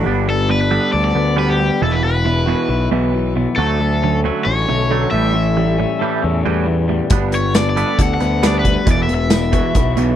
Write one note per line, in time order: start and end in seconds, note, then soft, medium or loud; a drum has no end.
0.05 0.78 G1 medium
0.05 1.15 G3 medium
0.05 0.26 G3 medium
0.05 0.27 B3 medium
0.05 0.27 D4 medium
0.27 0.47 G3 medium
0.27 1.14 B3 medium
0.27 0.48 B3 medium
0.27 0.51 A4 medium
0.48 0.69 G3 medium
0.48 0.69 B3 medium
0.48 0.92 D4 medium
0.48 0.60 B4 medium
0.61 0.92 B4 medium
0.71 0.91 G3 medium
0.71 0.92 B3 medium
0.71 0.92 D4 medium
0.71 1.82 A4 medium
0.93 1.12 D2 medium
0.93 1.13 G3 medium
0.93 1.14 B3 medium
0.93 1.82 D4 medium
0.93 1.03 D5 medium
1.04 1.35 D5 medium
1.15 1.69 D2 medium
1.15 1.35 G3 medium
1.15 1.59 B3 medium
1.15 1.36 B3 medium
1.36 1.58 G3 medium
1.36 1.82 G3 medium
1.36 1.58 B3 medium
1.36 1.58 D4 medium
1.36 1.49 B4 medium
1.50 1.80 G4 medium
1.59 1.79 G3 medium
1.59 1.80 B3 medium
1.59 1.82 B3 medium
1.82 2.54 E1 medium
1.82 2.02 E2 medium
1.82 2.92 E2 medium
1.82 2.03 B2 medium
1.82 2.03 E3 medium
1.82 1.94 A4 medium
1.92 2.03 B4 medium
2.03 2.24 E2 medium
2.03 2.24 B2 medium
2.03 2.91 B3 medium
2.03 2.88 B4 medium
2.25 2.46 E2 medium
2.25 2.46 B2 medium
2.25 2.67 E4 medium
2.46 2.68 E2 medium
2.46 2.69 B2 loud
2.46 2.69 E3 loud
2.46 3.57 F#4 medium
2.68 2.87 B1 medium
2.68 2.90 E2 medium
2.68 2.90 B2 medium
2.68 3.57 E4 medium
2.91 3.45 B1 medium
2.91 3.13 E2 medium
2.91 3.13 B2 medium
2.91 3.13 E3 loud
2.91 3.34 B3 medium
3.14 3.34 B2 medium
3.14 3.58 E3 medium
3.36 3.56 E2 medium
3.36 3.56 B2 medium
3.36 3.58 B3 medium
3.56 4.30 D2 medium
3.56 4.68 D3 medium
3.56 3.79 D3 medium
3.56 3.79 F#3 medium
3.56 3.79 A3 medium
3.56 4.19 A4 medium
3.80 4.00 D3 medium
3.80 4.01 F#3 medium
3.80 4.68 A3 medium
4.03 4.23 D3 medium
4.03 4.23 F#3 medium
4.03 4.46 C#4 medium
4.24 4.45 D3 medium
4.24 4.45 F#3 medium
4.24 4.46 A3 loud
4.24 5.13 F#4 medium
4.45 4.64 A1 medium
4.45 4.67 D3 medium
4.45 4.67 F#3 medium
4.45 5.13 C#4 medium
4.45 5.10 C#5 medium
4.69 5.04 B1 medium
4.69 4.88 D3 medium
4.69 4.89 F#3 medium
4.69 5.57 A3 medium
4.91 5.11 D3 medium
4.91 5.13 F#3 medium
4.91 5.12 F#3 medium
4.91 5.12 A3 medium
5.11 5.84 A1 medium
5.11 5.33 A2 medium
5.11 5.34 A2 medium
5.11 5.34 E3 medium
5.11 5.34 G3 medium
5.11 6.40 E5 medium
5.35 6.45 A2 medium
5.35 5.55 A2 medium
5.35 5.55 E3 medium
5.57 5.77 A2 medium
5.57 5.77 E3 medium
5.57 6.42 G3 medium
5.78 5.99 A2 medium
5.78 5.99 E3 medium
5.78 6.21 C#4 medium
5.99 6.22 A2 medium
5.99 6.22 E3 loud
5.99 6.22 G3 loud
5.99 7.10 A4 medium
6.22 6.42 E2 medium
6.22 6.43 A2 medium
6.22 6.43 E3 medium
6.22 7.11 C#4 medium
6.43 7.00 E2 medium
6.43 6.66 A2 medium
6.43 6.66 E3 medium
6.43 6.87 G3 medium
6.43 6.66 G3 medium
6.66 6.87 A2 medium
6.66 7.10 E3 medium
6.66 6.87 E3 medium
6.88 7.09 A2 medium
6.88 7.09 E3 medium
6.88 7.09 G3 medium
7.10 7.83 G1 medium
7.10 8.21 G3 medium
7.10 7.32 G3 medium
7.10 7.32 B3 medium
7.10 7.32 D4 medium
7.10 kick loud
7.10 closed hi-hat medium
7.32 7.53 G3 medium
7.32 8.20 B3 medium
7.32 7.53 B3 medium
7.32 7.56 C#5 medium
7.32 closed hi-hat medium
7.55 7.75 G3 medium
7.55 7.75 B3 medium
7.55 7.98 D4 medium
7.55 7.66 D5 medium
7.55 snare loud
7.55 closed hi-hat medium
7.55 tambourine loud
7.70 8.02 D5 medium
7.76 7.98 G3 medium
7.76 7.98 B3 medium
7.76 7.98 D4 loud
7.76 8.87 A4 medium
7.76 closed hi-hat medium
7.99 8.17 D2 medium
7.99 8.19 G3 medium
7.99 8.19 B3 medium
7.99 8.87 D4 medium
7.99 8.12 F#5 medium
7.99 kick medium
7.99 closed hi-hat medium
8.14 8.46 F#5 medium
8.20 8.75 D2 medium
8.20 8.41 G3 medium
8.20 8.41 B3 medium
8.20 8.63 B3 medium
8.20 closed hi-hat medium
8.42 8.87 G3 medium
8.42 8.63 G3 medium
8.42 8.63 B3 medium
8.42 8.64 D4 medium
8.42 snare loud
8.42 closed hi-hat medium
8.42 tambourine loud
8.47 8.56 D5 medium
8.59 8.88 B4 medium
8.64 8.85 G3 medium
8.64 8.85 B3 medium
8.64 8.87 B3 medium
8.64 kick medium
8.64 closed hi-hat medium
8.86 9.59 E1 medium
8.86 9.07 E2 medium
8.86 9.97 E2 medium
8.86 9.07 B2 medium
8.86 9.08 E3 medium
8.86 kick loud
8.86 closed hi-hat medium
8.92 9.00 D5 medium
9.03 9.12 E5 medium
9.08 9.29 E2 medium
9.08 9.29 B2 medium
9.08 9.97 B3 medium
9.08 closed hi-hat medium
9.14 9.96 E5 medium
9.30 9.51 E2 medium
9.30 9.51 B2 medium
9.30 9.73 E4 medium
9.30 snare loud
9.30 closed hi-hat medium
9.30 tambourine loud
9.52 9.73 E2 loud
9.52 9.74 B2 loud
9.52 9.74 E3 loud
9.52 10.16 F#4 medium
9.52 kick medium
9.52 closed hi-hat medium
9.74 9.93 B1 medium
9.74 9.95 E2 medium
9.74 9.95 B2 medium
9.74 10.16 E4 medium
9.74 kick medium
9.74 closed hi-hat medium
9.97 10.16 B1 medium
9.97 10.16 E2 medium
9.97 10.16 B2 medium
9.97 10.16 E3 medium
9.97 10.16 B3 medium
9.97 closed hi-hat medium